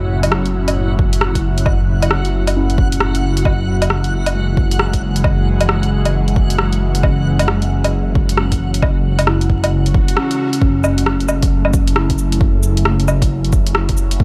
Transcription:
Already playing: detuned saw bass F#1, analog synth pad A2 F#3 C#4 E4, synth keys E4 F#4, synth texture F#4 F#5
0.23 closed hi-hat, low woodblock
0.32 cross-stick
0.46 closed hi-hat
0.68 closed hi-hat, low woodblock
0.99 kick
1.13 closed hi-hat
1.21 cross-stick
1.35 kick, closed hi-hat
1.58 closed hi-hat
1.66 kick, low woodblock
2.02 closed hi-hat, low woodblock
2.11 cross-stick
2.25 closed hi-hat
2.47 closed hi-hat, low woodblock
2.56 synth keys C#4 E4
2.70 closed hi-hat
2.78 kick
2.92 closed hi-hat
3.00 cross-stick
3.15 closed hi-hat
3.37 closed hi-hat
3.45 detuned saw bass F#1, analog synth pad C#3, kick, low woodblock
3.67 analog synth pad E3
3.82 closed hi-hat, low woodblock
3.90 cross-stick
4.01 analog synth pad G#3, closed hi-hat
4.26 closed hi-hat, low woodblock
4.35 synth keys G#3
4.57 kick
4.71 closed hi-hat
4.79 cross-stick
4.93 kick, closed hi-hat
5.16 closed hi-hat
5.24 kick, low woodblock
5.61 closed hi-hat, low woodblock
5.69 cross-stick
5.83 closed hi-hat
6.05 closed hi-hat, low woodblock
6.28 closed hi-hat
6.36 kick
6.50 closed hi-hat
6.58 cross-stick
6.73 closed hi-hat
6.95 closed hi-hat
7.03 synth keys C#4, kick, low woodblock
7.39 closed hi-hat, low woodblock
7.48 cross-stick
7.62 closed hi-hat
7.84 closed hi-hat, low woodblock
8.15 kick
8.29 closed hi-hat
8.37 synth keys C#4, cross-stick
8.52 kick, closed hi-hat
8.74 closed hi-hat
8.82 kick, low woodblock
9.19 closed hi-hat, low woodblock
9.27 synth keys E4, cross-stick
9.41 closed hi-hat
9.50 kick
9.64 closed hi-hat, low woodblock
9.72 swell
9.86 closed hi-hat
9.94 kick
10.08 closed hi-hat
10.17 synth keys C#4, cross-stick
10.31 closed hi-hat
10.53 closed hi-hat
10.61 detuned saw bass F#1, synth keys C#4, kick
10.74 analog synth pad A3 E4
10.79 analog synth pad F#3
10.84 cabasa, low woodblock
10.98 closed hi-hat
11.06 cross-stick
11.20 closed hi-hat
11.29 cabasa, low woodblock
11.43 kick, closed hi-hat
11.65 low woodblock
11.73 kick, cabasa
11.87 closed hi-hat
11.96 synth keys E4, cross-stick
12.10 kick, closed hi-hat
12.18 cabasa
12.32 closed hi-hat
12.41 kick
12.63 cabasa
12.77 closed hi-hat
12.85 cross-stick
13.00 closed hi-hat
13.08 cabasa, low woodblock
13.22 kick, closed hi-hat
13.45 closed hi-hat
13.53 kick, cabasa
13.66 closed hi-hat
13.75 cross-stick
13.89 kick, closed hi-hat
13.97 cabasa
14.11 closed hi-hat
14.20 synth keys A3, kick

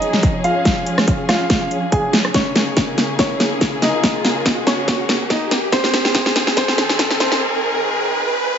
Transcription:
Already playing: string section F3 C#4 G#4, grand piano D#4 D#5, riser
0.02 closed hi-hat
0.13 snare
0.23 kick, closed hi-hat
0.44 grand piano F4 F5, closed hi-hat
0.65 kick, snare, closed hi-hat
0.87 closed hi-hat
0.98 cross-stick, snare
1.08 kick, closed hi-hat
1.29 grand piano F4 F5, cross-stick, snare, closed hi-hat
1.50 kick, snare, closed hi-hat
1.71 closed hi-hat
1.92 grand piano G#4 G#5, kick, closed hi-hat
2.13 snare, closed hi-hat
2.25 cross-stick
2.34 string section C#3 A#3 G#4, grand piano C#4 C#5, kick, snare, closed hi-hat
2.56 snare, closed hi-hat
2.77 kick, snare, closed hi-hat
2.98 snare, closed hi-hat
3.19 grand piano C#4 C#5, kick, snare, closed hi-hat
3.40 snare, closed hi-hat
3.61 kick, snare, closed hi-hat
3.82 grand piano D#4 D#5, snare, closed hi-hat
4.03 kick, snare, closed hi-hat
4.25 snare, closed hi-hat
4.46 kick, snare, closed hi-hat
4.67 grand piano C#4 C#5, snare, closed hi-hat
4.88 kick, snare, closed hi-hat
5.09 snare, closed hi-hat
5.30 grand piano D#4 D#5, kick, snare, closed hi-hat
5.51 snare, closed hi-hat
5.72 string section D#3 C4 G#4, grand piano C4 C5, kick, snare, closed hi-hat
5.84 snare
5.94 snare, closed hi-hat
6.05 snare
6.15 kick, snare, closed hi-hat
6.26 snare
6.36 snare, closed hi-hat
6.47 snare
6.57 grand piano C4 C5, kick, snare, closed hi-hat
6.68 snare
6.78 snare, closed hi-hat
6.89 snare
6.99 kick, snare, closed hi-hat
7.11 snare
7.20 grand piano C4 C5, snare, closed hi-hat
7.32 snare

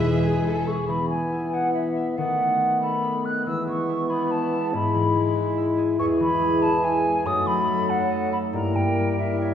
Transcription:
Already playing: double bass section E1, timpani E2, cello section E2, french horn section E3, harp E3 G#3 B3 B4, bassoon G#3, viola section E4 G#4, violin section G#4 E5, clarinet B4, flute E6
0.00 harp E4
0.22 harp G#4, viola section G#4, flute G#5
0.44 viola section A4, harp B5
0.66 viola section G#4, harp E5, flute C#6
0.88 french horn section E3 B3, harp E3, bassoon E3, clarinet B3, flute B5
1.10 harp G#3, flute G#5
1.32 harp E4
1.54 harp G#4, flute F#5
1.75 flute E5, harp B5
1.96 harp E5
2.18 bassoon D#3, harp D#3, french horn section A3, clarinet B3, flute F#5
2.39 harp A3
2.61 harp B3
2.82 clarinet B3, harp A4, flute B5
3.04 harp B5
3.25 harp B4, flute F#6
3.46 harp E3, bassoon E3, french horn section G#3 B3, clarinet B3, flute E6
3.67 harp G#3, flute C#6
3.89 harp E4
4.10 clarinet B3, harp G#4, flute B5
4.31 flute A5, harp B5
4.52 harp E5
4.73 harp G#2, bassoon G#3, clarinet E4, french horn section E4, flute B5
4.94 harp E3
5.15 harp G#3
5.36 harp B4
5.57 harp E5
5.78 harp G#4
5.99 harp E2, bassoon E3, french horn section G#3, clarinet G#4, flute C#6
6.20 harp E3, flute B5
6.40 harp G#3
6.61 harp G#4, flute A5
6.83 harp E5, flute G#5
7.04 harp G#4
7.25 harp F#2, bassoon F#3, french horn section A3 D#4, clarinet A4, flute D#6
7.46 harp F#3, flute B5
7.68 harp A3
7.89 harp F#4, flute F#5
8.10 harp D#5
8.32 harp A4, flute B5
8.53 harp G2, bassoon G3, french horn section A#3 E4, clarinet A#4, flute A#5
8.75 harp G3, flute G5
8.97 harp A#3
9.18 french horn section A#3 E4, harp E4, flute E5
9.41 harp C#5, flute E5

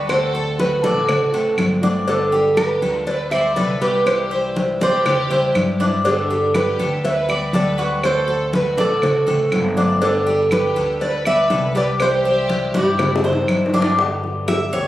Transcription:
Already playing: upright bass D2, cuban tres F#4
0.08 steel-string acoustic guitar D3 A3 C4 F#4, violin section A4, nylon-string guitar C5, cowbell, high conga, claves
0.34 cuban tres A4, high conga
0.57 violin section F#4, nylon-string guitar B4, cowbell, high conga
0.81 upright bass A1, violin section F#4, nylon-string guitar A4, cuban tres D5, cowbell, high conga
1.08 muted steel-string acoustic guitar stroke, cowbell, high conga, low conga, claves
1.32 steel-string acoustic guitar A3 C4 F#4, cuban tres A4, cowbell, high conga
1.58 upright bass G1, steel-string acoustic guitar D3 A3 C4 F#4, cowbell, high conga, claves
1.82 steel-string acoustic guitar A3 C4 F#4, cuban tres D4, cowbell, high conga
2.06 steel-string acoustic guitar D3 G3 B3 G4, violin section D4, cuban tres D4, nylon-string guitar A4, cowbell, high conga
2.32 cuban tres G4, high conga
2.57 violin section G4, nylon-string guitar B4, cowbell, high conga, claves
2.82 upright bass D2, cuban tres A4, cowbell, high conga
3.06 violin section B4, nylon-string guitar D5, muted steel-string acoustic guitar stroke, cowbell, high conga
3.31 steel-string acoustic guitar G3 B3 G4, violin section C5, cuban tres D5, nylon-string guitar E5, high conga, claves
3.55 upright bass C2, steel-string acoustic guitar D3 G3 B3 G4, cuban tres A4, violin section B4, nylon-string guitar D5, cowbell, high conga
3.81 steel-string acoustic guitar G3 B3 G4, cuban tres G4, violin section G4, nylon-string guitar B4, cowbell
4.05 steel-string acoustic guitar C3 E3 G3 D4 E4, violin section G4, nylon-string guitar C5, cowbell, high conga, claves
4.31 cuban tres C5, high conga
4.56 cowbell, high conga
4.81 upright bass E2, violin section G4, nylon-string guitar C5, cuban tres D5, cowbell, high conga
5.06 muted steel-string acoustic guitar stroke, cowbell, high conga, low conga, claves
5.30 steel-string acoustic guitar E3 G3 D4 E4, cuban tres C5, cowbell, high conga, low conga
5.55 upright bass G2, steel-string acoustic guitar E3 G3 D4 E4, cowbell, high conga, claves
5.80 steel-string acoustic guitar E3 G3 D4 E4, cuban tres D4, cowbell, high conga
6.04 steel-string acoustic guitar D3 G3 B3 G4, cuban tres D4, violin section D4, nylon-string guitar A4, cowbell
6.30 cuban tres G4, high conga
6.54 violin section G4, nylon-string guitar B4, cowbell, high conga, claves
6.79 upright bass D2, cuban tres A4, cowbell, high conga
7.04 violin section B4, nylon-string guitar E5, muted steel-string acoustic guitar stroke, cowbell, high conga
7.29 steel-string acoustic guitar G3 B3 G4, cuban tres D5, high conga, claves
7.53 upright bass D2, steel-string acoustic guitar D3 G3 B3 G4, cuban tres A4, violin section B4, nylon-string guitar D5, cowbell, high conga
7.78 steel-string acoustic guitar G3 B3 G4, cuban tres F#4, cowbell
8.03 steel-string acoustic guitar D3 A3 C4 F#4, violin section A4, nylon-string guitar C5, cowbell, high conga, claves
8.28 cuban tres A4, high conga
8.53 violin section F#4, nylon-string guitar B4, cowbell, high conga
8.77 upright bass A1, violin section F#4, nylon-string guitar A4, cuban tres D5, cowbell, high conga
9.02 muted steel-string acoustic guitar stroke, cowbell, high conga, low conga, claves
9.27 upright bass A1, steel-string acoustic guitar A3 C4 F#4, cuban tres A4, cowbell, high conga, low conga
9.52 upright bass G1, steel-string acoustic guitar D3 A3 C4 F#4, cowbell, high conga, claves
9.77 steel-string acoustic guitar A3 C4 F#4, cuban tres D4, cowbell, high conga
10.01 steel-string acoustic guitar D3 G3 B3 G4, cuban tres D4, violin section D4, nylon-string guitar A4, cowbell, high conga
10.27 cuban tres G4, high conga
10.51 violin section G4, nylon-string guitar B4, cowbell, high conga, claves
10.76 upright bass D2, cuban tres A4, cowbell, high conga
11.01 violin section B4, nylon-string guitar D5, muted steel-string acoustic guitar stroke, cowbell, high conga
11.25 steel-string acoustic guitar G3 B3 G4, violin section B4, cuban tres D5, nylon-string guitar E5, high conga, claves
11.50 upright bass C2, steel-string acoustic guitar D3 G3 B3 G4, cuban tres A4, cowbell, high conga
11.75 steel-string acoustic guitar G3 B3 G4, cuban tres G4, violin section B4, nylon-string guitar D5, cowbell
11.99 steel-string acoustic guitar C3 E3 G3 D4 E4, violin section G4, nylon-string guitar C5, cowbell, high conga, claves
12.25 cuban tres C5, high conga
12.49 cowbell, high conga
12.74 upright bass G2, violin section E4, nylon-string guitar G4, cuban tres D5, cowbell, high conga
12.99 muted steel-string acoustic guitar stroke, cowbell, high bongo, high conga, low conga, claves
13.16 high bongo
13.23 steel-string acoustic guitar E3 G3 D4 E4, violin section D#4, nylon-string guitar F#4, cuban tres C5, cowbell, high conga, low conga
13.33 low bongo
13.48 upright bass G2, steel-string acoustic guitar E3 G3 D4 E4, cowbell, high conga, claves
13.66 low bongo
13.73 steel-string acoustic guitar E3 G3 D4 E4, cuban tres D4, cowbell, high conga
13.82 low bongo
13.98 steel-string acoustic guitar D3 G3 B3 G4, high bongo, high conga
14.23 high bongo, high conga
14.48 cuban tres E5, high bongo, high conga, claves
14.73 upright bass D2, steel-string acoustic guitar G3 B3 G4, cuban tres C#5, high bongo, high conga

